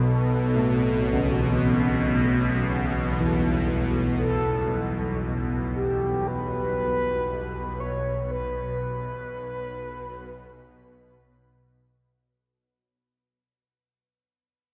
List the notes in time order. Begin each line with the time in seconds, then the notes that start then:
Already playing: B1 B2 B3 B4
0.03 A4
0.56 A3
1.13 C#3
3.21 E3
4.18 A4
5.74 G4
6.27 B4
7.80 C#5
8.31 B4